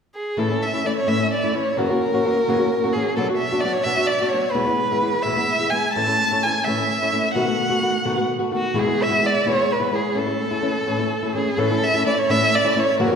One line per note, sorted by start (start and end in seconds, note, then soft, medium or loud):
0.15 0.40 G#4 medium
0.37 0.50 A2 medium
0.37 0.50 E3 medium
0.37 0.50 A3 medium
0.37 0.50 C#4 medium
0.37 0.49 E4 medium
0.37 0.64 A4 medium
0.50 0.66 A3 soft
0.50 0.66 C#4 soft
0.50 0.65 E4 soft
0.63 0.87 E5 medium
0.74 0.84 A3 soft
0.74 0.85 C#4 soft
0.74 0.85 E4 soft
0.85 0.99 E3 soft
0.85 0.99 A3 medium
0.85 1.00 C#4 medium
0.85 1.00 E4 medium
0.85 0.96 D5 medium
0.96 1.09 C#5 medium
1.07 1.20 A2 medium
1.07 1.20 E3 soft
1.07 1.19 A3 medium
1.07 1.19 C#4 medium
1.07 1.18 E4 medium
1.07 1.32 E5 medium
1.19 1.35 A3 soft
1.19 1.35 C#4 soft
1.19 1.34 E4 soft
1.33 1.56 D5 medium
1.43 1.53 A3 soft
1.43 1.54 C#4 soft
1.43 1.54 E4 soft
1.53 1.68 E3 soft
1.53 1.68 A3 soft
1.53 1.69 C#4 soft
1.53 1.69 E4 soft
1.53 1.79 C#5 medium
1.77 1.89 F#2 medium
1.77 1.90 C#3 medium
1.77 1.90 E3 medium
1.77 1.90 A#3 medium
1.77 1.90 C#4 medium
1.77 1.89 F#4 medium
1.77 2.94 A#4 medium
1.90 2.05 E3 soft
1.90 2.05 A#3 soft
1.90 2.05 C#4 soft
1.90 2.04 F#4 soft
2.14 2.23 E3 soft
2.14 2.24 A#3 soft
2.14 2.25 C#4 soft
2.14 2.25 F#4 medium
2.25 2.38 E3 soft
2.25 2.38 A#3 medium
2.25 2.39 C#4 medium
2.25 2.39 F#4 medium
2.48 2.59 F#2 medium
2.48 2.60 C#3 medium
2.48 2.60 E3 medium
2.48 2.59 A#3 medium
2.48 2.59 C#4 medium
2.48 2.58 F#4 medium
2.59 2.74 E3 soft
2.59 2.74 A#3 soft
2.59 2.74 C#4 soft
2.59 2.73 F#4 soft
2.84 2.94 E3 soft
2.84 2.95 A#3 soft
2.84 2.94 C#4 soft
2.84 2.94 F#4 medium
2.93 3.08 E3 soft
2.93 3.08 A#3 soft
2.93 3.09 C#4 medium
2.93 3.09 F#4 soft
2.93 3.16 G#4 medium
3.17 3.28 B2 medium
3.17 3.28 F#3 medium
3.17 3.29 B3 medium
3.17 3.29 D4 medium
3.17 3.29 F#4 medium
3.17 3.27 A4 medium
3.30 3.44 B3 soft
3.30 3.43 D4 soft
3.30 3.43 F#4 soft
3.37 3.62 E5 medium
3.52 3.63 B3 soft
3.52 3.63 D4 medium
3.52 3.63 F#4 medium
3.60 3.76 F#3 medium
3.60 3.77 B3 medium
3.60 3.74 D5 medium
3.65 3.77 D4 medium
3.65 3.77 F#4 medium
3.73 3.85 C#5 medium
3.83 3.97 B2 medium
3.83 3.97 F#3 medium
3.83 3.97 B3 medium
3.83 3.97 D4 medium
3.83 3.96 F#4 medium
3.83 4.08 E5 medium
3.97 4.12 B3 soft
3.97 4.12 D4 soft
3.97 4.11 F#4 soft
4.07 4.30 D5 medium
4.20 4.32 B3 soft
4.20 4.32 D4 soft
4.20 4.31 F#4 soft
4.29 4.53 C#5 medium
4.33 4.45 F#3 soft
4.33 4.46 B3 soft
4.33 4.46 D4 soft
4.33 4.46 F#4 soft
4.51 4.66 E2 medium
4.51 4.66 B2 medium
4.51 4.66 E3 medium
4.51 4.66 G#3 medium
4.51 4.66 E4 medium
4.51 5.24 B4 medium
4.55 4.67 B3 medium
4.67 4.82 E3 soft
4.67 4.82 G#3 soft
4.67 4.81 B3 soft
4.67 4.81 E4 soft
4.91 5.01 E3 soft
4.91 5.01 G#3 soft
4.91 5.02 B3 soft
4.91 5.02 E4 soft
5.02 5.15 E3 soft
5.02 5.16 G#3 medium
5.02 5.16 B3 medium
5.02 5.16 E4 soft
5.22 5.37 E2 medium
5.22 5.37 B2 medium
5.22 5.37 E3 medium
5.22 5.37 G#3 medium
5.22 5.37 B3 medium
5.22 5.71 E5 medium
5.27 5.36 E4 soft
5.37 5.52 E3 soft
5.37 5.52 G#3 soft
5.37 5.52 B3 soft
5.37 5.51 E4 soft
5.59 5.70 E3 soft
5.59 5.70 G#3 soft
5.59 5.71 B3 soft
5.59 5.72 E4 soft
5.70 5.86 E3 soft
5.70 5.86 G#3 soft
5.70 5.86 B3 soft
5.70 5.86 E4 soft
5.70 5.93 G#5 medium
5.93 6.08 A2 medium
5.93 6.08 E3 medium
5.93 6.07 A3 medium
5.93 6.07 C#4 medium
5.93 6.06 E4 medium
5.93 6.44 A5 medium
6.07 6.23 A3 soft
6.07 6.22 C#4 soft
6.07 6.22 E4 soft
6.31 6.43 A3 soft
6.31 6.44 C#4 soft
6.31 6.43 E4 soft
6.43 6.57 E3 soft
6.43 6.58 A3 soft
6.43 6.58 C#4 medium
6.43 6.58 E4 medium
6.43 6.65 G#5 medium
6.64 6.79 A2 soft
6.64 6.79 E3 medium
6.64 6.78 A3 medium
6.64 7.34 E5 medium
6.68 6.77 C#4 medium
6.68 6.76 E4 medium
6.78 6.93 A3 soft
6.78 6.93 C#4 soft
6.78 6.93 E4 soft
7.02 7.11 A3 soft
7.02 7.12 C#4 soft
7.02 7.13 E4 soft
7.12 7.27 E3 soft
7.12 7.27 A3 medium
7.12 7.27 C#4 soft
7.12 7.27 E4 soft
7.35 7.48 B2 medium
7.35 7.48 D#3 medium
7.35 7.47 A3 medium
7.35 7.46 B3 medium
7.35 7.45 F#4 medium
7.35 8.26 F#5 medium
7.47 7.63 A3 soft
7.47 7.62 B3 soft
7.47 7.62 F#4 soft
7.69 7.81 A3 soft
7.69 7.81 B3 soft
7.69 7.82 F#4 soft
7.81 7.96 D#3 soft
7.81 7.96 A3 medium
7.81 7.97 B3 medium
7.81 7.97 F#4 medium
8.05 8.18 B2 medium
8.05 8.18 D#3 medium
8.05 8.17 A3 medium
8.05 8.16 B3 medium
8.05 8.15 F#4 medium
8.16 8.33 A3 soft
8.16 8.32 B3 soft
8.16 8.32 F#4 medium
8.39 8.51 A3 soft
8.39 8.51 B3 soft
8.39 8.51 F#4 soft
8.51 8.66 D#3 soft
8.51 8.66 A3 soft
8.51 8.66 B3 soft
8.51 8.67 F#4 soft
8.56 8.81 F#4 medium
8.74 8.87 E2 medium
8.74 8.87 B2 medium
8.74 8.87 E3 medium
8.74 8.87 G#3 medium
8.74 8.86 B3 medium
8.74 8.86 E4 medium
8.79 9.04 G#4 medium
8.87 9.03 E3 soft
8.87 9.02 G#3 soft
8.87 9.02 B3 soft
8.87 9.02 E4 soft
9.02 9.28 E5 medium
9.09 9.21 E3 soft
9.09 9.21 G#3 soft
9.09 9.22 B3 soft
9.09 9.22 E4 soft
9.22 9.36 E3 medium
9.22 9.36 G#3 medium
9.22 9.37 B3 medium
9.22 9.37 E4 medium
9.26 9.50 D5 medium
9.45 9.58 E2 medium
9.45 9.58 B2 medium
9.45 9.56 E3 medium
9.45 9.56 G#3 medium
9.45 9.55 B3 soft
9.45 9.55 E4 medium
9.45 9.74 C#5 medium
9.56 9.72 E3 soft
9.56 9.72 G#3 soft
9.56 9.72 B3 soft
9.56 9.71 E4 soft
9.72 9.96 B4 medium
9.80 9.90 E3 soft
9.80 9.91 G#3 soft
9.80 9.91 B3 soft
9.80 9.92 E4 soft
9.91 10.06 E3 soft
9.91 10.06 G#3 medium
9.91 10.07 B3 medium
9.91 10.07 E4 soft
9.95 10.20 G#4 medium
10.14 10.27 A2 medium
10.14 10.27 E3 medium
10.14 10.27 A3 medium
10.14 10.26 C#4 medium
10.14 10.25 E4 medium
10.18 11.35 A4 medium
10.27 10.42 A3 soft
10.27 10.42 C#4 soft
10.27 10.42 E4 soft
10.51 10.61 A3 soft
10.51 10.62 C#4 soft
10.51 10.62 E4 soft
10.62 10.77 E3 soft
10.62 10.77 A3 soft
10.62 10.77 C#4 medium
10.62 10.77 E4 medium
10.86 10.99 A2 medium
10.86 10.99 E3 medium
10.86 10.99 A3 medium
10.86 10.98 C#4 medium
10.86 10.98 E4 medium
10.99 11.14 A3 soft
10.99 11.14 C#4 soft
10.99 11.14 E4 soft
11.23 11.34 A3 soft
11.23 11.35 C#4 soft
11.23 11.34 E4 soft
11.35 11.49 E3 soft
11.35 11.49 A3 soft
11.35 11.49 C#4 soft
11.35 11.49 E4 medium
11.35 11.60 G#4 medium
11.57 11.70 A2 medium
11.57 11.70 E3 medium
11.57 11.70 A3 medium
11.57 11.71 C#4 medium
11.57 11.70 E4 medium
11.57 11.85 A4 medium
11.71 11.86 A3 soft
11.71 11.86 C#4 soft
11.71 11.85 E4 medium
11.84 12.06 E5 medium
11.94 12.04 A3 soft
11.94 12.05 C#4 medium
11.94 12.06 E4 soft
12.05 12.19 E3 medium
12.05 12.19 A3 medium
12.05 12.20 C#4 medium
12.05 12.20 E4 medium
12.05 12.20 D5 medium
12.18 12.32 C#5 medium
12.29 12.41 A2 medium
12.29 12.41 E3 medium
12.29 12.41 A3 medium
12.29 12.41 C#4 medium
12.29 12.40 E4 medium
12.29 12.56 E5 medium
12.41 12.56 A3 soft
12.41 12.56 C#4 soft
12.41 12.56 E4 soft
12.55 12.81 D5 medium
12.65 12.75 A3 soft
12.65 12.75 C#4 soft
12.65 12.76 E4 medium
12.75 12.89 E3 medium
12.75 12.90 A3 soft
12.75 12.90 C#4 medium
12.75 12.90 E4 medium
12.79 13.00 C#5 medium
12.99 13.11 F#2 medium
12.99 13.11 C#3 medium
12.99 13.11 E3 medium
12.99 13.11 A#3 medium
12.99 13.11 C#4 medium
12.99 13.10 F#4 medium
12.99 13.15 A#4 medium
13.12 13.15 A#3 soft
13.12 13.15 C#4 medium
13.12 13.15 F#4 soft